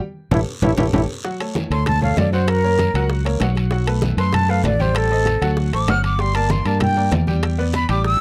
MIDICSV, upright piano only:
0, 0, Header, 1, 2, 480
1, 0, Start_track
1, 0, Key_signature, 2, "major"
1, 0, Tempo, 309119
1, 20, Time_signature, 4, 2, 24, 8
1, 12745, End_track
2, 0, Start_track
2, 0, Title_t, "Upright piano"
2, 0, Program_c, 0, 0
2, 484, Note_on_c, 0, 73, 82
2, 486, Note_on_c, 0, 67, 80
2, 486, Note_on_c, 0, 69, 93
2, 643, Note_off_c, 0, 73, 0
2, 644, Note_off_c, 0, 69, 0
2, 645, Note_off_c, 0, 67, 0
2, 965, Note_on_c, 0, 67, 94
2, 968, Note_on_c, 0, 69, 98
2, 968, Note_on_c, 0, 73, 99
2, 1124, Note_off_c, 0, 67, 0
2, 1125, Note_off_c, 0, 69, 0
2, 1125, Note_off_c, 0, 73, 0
2, 1205, Note_on_c, 0, 67, 101
2, 1207, Note_on_c, 0, 73, 99
2, 1209, Note_on_c, 0, 69, 98
2, 1364, Note_off_c, 0, 67, 0
2, 1365, Note_off_c, 0, 73, 0
2, 1366, Note_off_c, 0, 69, 0
2, 1449, Note_on_c, 0, 73, 96
2, 1450, Note_on_c, 0, 67, 95
2, 1453, Note_on_c, 0, 69, 99
2, 1605, Note_off_c, 0, 73, 0
2, 1607, Note_off_c, 0, 67, 0
2, 1608, Note_off_c, 0, 69, 0
2, 1932, Note_on_c, 0, 54, 70
2, 1937, Note_on_c, 0, 66, 71
2, 1938, Note_on_c, 0, 78, 65
2, 2131, Note_off_c, 0, 54, 0
2, 2133, Note_off_c, 0, 66, 0
2, 2134, Note_off_c, 0, 78, 0
2, 2177, Note_on_c, 0, 57, 72
2, 2181, Note_on_c, 0, 69, 67
2, 2185, Note_on_c, 0, 73, 68
2, 2570, Note_off_c, 0, 57, 0
2, 2572, Note_off_c, 0, 69, 0
2, 2575, Note_off_c, 0, 73, 0
2, 2655, Note_on_c, 0, 57, 74
2, 2660, Note_on_c, 0, 69, 74
2, 2666, Note_on_c, 0, 73, 67
2, 3049, Note_off_c, 0, 57, 0
2, 3052, Note_off_c, 0, 69, 0
2, 3055, Note_off_c, 0, 73, 0
2, 3134, Note_on_c, 0, 57, 81
2, 3141, Note_on_c, 0, 69, 78
2, 3144, Note_on_c, 0, 73, 79
2, 3528, Note_off_c, 0, 57, 0
2, 3532, Note_off_c, 0, 69, 0
2, 3534, Note_off_c, 0, 73, 0
2, 3619, Note_on_c, 0, 54, 79
2, 3619, Note_on_c, 0, 66, 88
2, 3625, Note_on_c, 0, 78, 86
2, 4010, Note_off_c, 0, 54, 0
2, 4011, Note_off_c, 0, 66, 0
2, 4014, Note_off_c, 0, 78, 0
2, 4097, Note_on_c, 0, 58, 69
2, 4102, Note_on_c, 0, 70, 72
2, 4104, Note_on_c, 0, 73, 78
2, 4489, Note_off_c, 0, 58, 0
2, 4492, Note_off_c, 0, 70, 0
2, 4493, Note_off_c, 0, 73, 0
2, 4576, Note_on_c, 0, 54, 77
2, 4581, Note_on_c, 0, 66, 76
2, 4584, Note_on_c, 0, 78, 82
2, 4969, Note_off_c, 0, 54, 0
2, 4972, Note_off_c, 0, 66, 0
2, 4973, Note_off_c, 0, 78, 0
2, 5047, Note_on_c, 0, 58, 78
2, 5052, Note_on_c, 0, 70, 75
2, 5058, Note_on_c, 0, 73, 85
2, 5246, Note_off_c, 0, 58, 0
2, 5249, Note_off_c, 0, 70, 0
2, 5253, Note_off_c, 0, 73, 0
2, 5296, Note_on_c, 0, 54, 75
2, 5298, Note_on_c, 0, 66, 70
2, 5304, Note_on_c, 0, 78, 73
2, 5688, Note_off_c, 0, 54, 0
2, 5690, Note_off_c, 0, 66, 0
2, 5693, Note_off_c, 0, 78, 0
2, 5768, Note_on_c, 0, 54, 73
2, 5773, Note_on_c, 0, 66, 76
2, 5780, Note_on_c, 0, 78, 72
2, 5967, Note_off_c, 0, 54, 0
2, 5970, Note_off_c, 0, 66, 0
2, 5974, Note_off_c, 0, 78, 0
2, 6008, Note_on_c, 0, 57, 79
2, 6013, Note_on_c, 0, 69, 73
2, 6017, Note_on_c, 0, 71, 75
2, 6403, Note_off_c, 0, 57, 0
2, 6406, Note_off_c, 0, 69, 0
2, 6409, Note_off_c, 0, 71, 0
2, 6486, Note_on_c, 0, 57, 77
2, 6489, Note_on_c, 0, 69, 76
2, 6499, Note_on_c, 0, 71, 75
2, 6882, Note_off_c, 0, 57, 0
2, 6884, Note_off_c, 0, 69, 0
2, 6890, Note_off_c, 0, 71, 0
2, 6967, Note_on_c, 0, 57, 77
2, 6970, Note_on_c, 0, 69, 73
2, 6977, Note_on_c, 0, 71, 74
2, 7363, Note_off_c, 0, 57, 0
2, 7365, Note_off_c, 0, 69, 0
2, 7369, Note_off_c, 0, 71, 0
2, 7445, Note_on_c, 0, 55, 88
2, 7453, Note_on_c, 0, 67, 84
2, 7454, Note_on_c, 0, 79, 87
2, 7842, Note_off_c, 0, 55, 0
2, 7846, Note_off_c, 0, 67, 0
2, 7847, Note_off_c, 0, 79, 0
2, 7933, Note_on_c, 0, 60, 71
2, 7938, Note_on_c, 0, 72, 74
2, 7945, Note_on_c, 0, 75, 76
2, 8327, Note_off_c, 0, 60, 0
2, 8330, Note_off_c, 0, 72, 0
2, 8334, Note_off_c, 0, 75, 0
2, 8408, Note_on_c, 0, 54, 88
2, 8412, Note_on_c, 0, 66, 82
2, 8415, Note_on_c, 0, 78, 81
2, 8804, Note_off_c, 0, 54, 0
2, 8806, Note_off_c, 0, 66, 0
2, 8808, Note_off_c, 0, 78, 0
2, 8894, Note_on_c, 0, 57, 75
2, 8898, Note_on_c, 0, 69, 82
2, 8903, Note_on_c, 0, 72, 77
2, 9091, Note_off_c, 0, 57, 0
2, 9093, Note_off_c, 0, 69, 0
2, 9096, Note_off_c, 0, 72, 0
2, 9140, Note_on_c, 0, 54, 74
2, 9146, Note_on_c, 0, 66, 77
2, 9153, Note_on_c, 0, 78, 79
2, 9532, Note_off_c, 0, 54, 0
2, 9535, Note_off_c, 0, 66, 0
2, 9539, Note_off_c, 0, 78, 0
2, 9625, Note_on_c, 0, 55, 72
2, 9628, Note_on_c, 0, 67, 72
2, 9635, Note_on_c, 0, 79, 64
2, 9818, Note_off_c, 0, 55, 0
2, 9819, Note_off_c, 0, 67, 0
2, 9824, Note_off_c, 0, 79, 0
2, 9861, Note_on_c, 0, 58, 74
2, 9866, Note_on_c, 0, 70, 74
2, 9867, Note_on_c, 0, 74, 72
2, 10253, Note_off_c, 0, 58, 0
2, 10255, Note_off_c, 0, 70, 0
2, 10256, Note_off_c, 0, 74, 0
2, 10341, Note_on_c, 0, 58, 70
2, 10346, Note_on_c, 0, 70, 76
2, 10349, Note_on_c, 0, 74, 70
2, 10733, Note_off_c, 0, 58, 0
2, 10736, Note_off_c, 0, 70, 0
2, 10738, Note_off_c, 0, 74, 0
2, 10815, Note_on_c, 0, 58, 80
2, 10819, Note_on_c, 0, 70, 76
2, 10826, Note_on_c, 0, 74, 81
2, 11210, Note_off_c, 0, 58, 0
2, 11212, Note_off_c, 0, 70, 0
2, 11216, Note_off_c, 0, 74, 0
2, 11297, Note_on_c, 0, 55, 82
2, 11298, Note_on_c, 0, 67, 84
2, 11306, Note_on_c, 0, 79, 89
2, 11691, Note_off_c, 0, 55, 0
2, 11692, Note_off_c, 0, 67, 0
2, 11697, Note_off_c, 0, 79, 0
2, 11777, Note_on_c, 0, 59, 75
2, 11781, Note_on_c, 0, 71, 76
2, 11784, Note_on_c, 0, 74, 68
2, 12172, Note_off_c, 0, 59, 0
2, 12174, Note_off_c, 0, 71, 0
2, 12176, Note_off_c, 0, 74, 0
2, 12257, Note_on_c, 0, 55, 83
2, 12263, Note_on_c, 0, 67, 82
2, 12263, Note_on_c, 0, 79, 87
2, 12653, Note_off_c, 0, 55, 0
2, 12656, Note_off_c, 0, 67, 0
2, 12656, Note_off_c, 0, 79, 0
2, 12745, End_track
0, 0, End_of_file